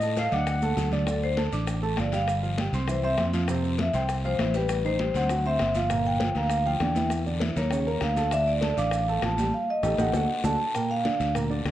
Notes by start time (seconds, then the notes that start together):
Already playing: A2 D#5
0.01 A3 A4 A5, high bongo, maracas
0.16 F5, high bongo, high conga, short guiro, maracas
0.31 D2 D4 D5 F#5 D6, high bongo, high conga, low conga, short guiro, maracas
0.46 high bongo, long guiro, maracas
0.62 A3 A4 A5, high conga, maracas
0.77 D2, high bongo, low bongo, low conga, short guiro, maracas
0.92 D3 D4 D5, low conga, short guiro, maracas
1.07 D3 D4 A4 D5, high bongo, high conga, long guiro, maracas
1.22 C5, high bongo, high conga, maracas
1.37 A3 A4 A5, high bongo, high conga, short guiro, maracas
1.52 A1 D4 D5 D6, high bongo, short guiro, maracas
1.67 high bongo, high conga, long guiro, maracas
1.82 A3 A4 A5, high conga, maracas
1.97 G1 F3 F4 D5 F5, high bongo, low bongo, high conga, short guiro, maracas
2.12 G3 G4 F5 G5, high bongo, high conga, short guiro, maracas
2.28 high bongo, high conga, long guiro, maracas
2.43 F3 F4 F5, high bongo, high conga, maracas
2.58 G3 G4 G5, high bongo, high conga, short guiro, maracas
2.73 C2 C4 C5 C6, high bongo, high conga, low conga, short guiro, maracas
2.88 E3 E4 C5 E5, high bongo, high conga, low conga, long guiro, maracas
3.03 C4 C5 E5 C6, high conga, maracas
3.18 F2, high bongo, low bongo, high conga, short guiro, maracas
3.33 F3 F4 F5, high bongo, high conga, short guiro, maracas
3.48 C3 C4 C5, high bongo, high conga, long guiro, maracas
3.63 high bongo, high conga, maracas
3.78 F3 F4 E5 F5, high bongo, high conga, short guiro, maracas
3.94 C2 C4 C5 G5 C6, high bongo, high conga, short guiro, maracas
4.08 high bongo, high conga, long guiro, maracas
4.24 F3 F4 C5 F5, high conga, maracas
4.39 A1 E3 E4 E5, high bongo, low bongo, high conga, short guiro, maracas
4.54 G3 G4 B4 G5, high bongo, high conga, short guiro, maracas
4.69 high bongo, high conga, long guiro, maracas
4.84 D#3 D#4 C5 D#5, high bongo, high conga, maracas
4.99 G3 G4 G5, high bongo, high conga, short guiro, maracas
5.14 D2 C4 C5 F#5 C6, high bongo, high conga, low conga, short guiro, maracas
5.29 F#3 F#4 F#5, high bongo, long guiro, maracas
5.45 C4 C5 E5 C6, high conga, maracas
5.59 G1, high bongo, low bongo, high conga, short guiro, maracas
5.75 F3 F4 F5, high bongo, high conga, short guiro, maracas
5.90 A#2 A#3 A#4, high bongo, high conga, long guiro, maracas
6.05 G5, high bongo, high conga, maracas
6.20 F3 F4 F5, high bongo, high conga, short guiro, maracas
6.35 D2 A#3 A#4 F5 A#5, high bongo, high conga, short guiro, maracas
6.50 high bongo, high conga, long guiro, maracas
6.66 F3 F4 F5 G5, high conga, maracas
6.80 E2 D3 D4 D5, high bongo, low bongo, high conga, short guiro, maracas
6.95 E3 E4 E5, high bongo, high conga, short guiro, maracas
7.10 high bongo, high conga, long guiro, maracas
7.25 D3 D4 D5, high bongo, high conga, maracas
7.40 E3 E4 E5, high bongo, high conga, short guiro, maracas
7.56 D#2 A#3 A#4 C#5 A#5, high bongo, high conga, low conga, short guiro, maracas
7.71 C#3 C#4 C#5, high bongo, long guiro, maracas
7.87 A#3 A#4 A#5, high conga, maracas
8.01 D2 F5, high bongo, low bongo, high conga, short guiro, maracas
8.17 A3 A4 A5, high bongo, high conga, short guiro, maracas
8.31 D3 D4 D5 E5, high bongo, high conga, long guiro, maracas
8.47 D5, high bongo, high conga, maracas
8.61 A3 A4 A5, high bongo, high conga, short guiro, maracas
8.77 A1 D4 D5 F5 D6, high bongo, high conga, short guiro, maracas
8.91 high bongo, high conga, long guiro, maracas
9.08 A3 A4 A5, high conga, maracas
9.22 A1 F3 F4 F5 A5, high bongo, low bongo, high conga, short guiro, maracas
9.38 G3 G4 G5, high bongo, high conga, short guiro, maracas
9.54 F5
9.70 D#5
9.83 A1 D#4 G4 A4, high bongo, high conga, long guiro, maracas
9.98 A1 D#4 G4 A4 F#5, high bongo, high conga, long guiro, maracas
10.13 D2 D4 F#4 A4, high bongo, high conga, long guiro, maracas
10.44 D2 D4 F#4 A4 A5, high bongo, high conga, long guiro, maracas
10.74 A#2 A#3 A#4 G5, high bongo, high conga, long guiro, maracas
10.90 F5, high bongo, high conga, maracas
11.05 D3 D4 D5, high bongo, high conga, short guiro, maracas
11.20 D2, high bongo, high conga, short guiro, maracas
11.35 A#2 A#3 A#4, high bongo, high conga, long guiro, maracas
11.50 D3 D4 D5, high conga, maracas
11.65 D2, high bongo, low bongo, high conga, short guiro, maracas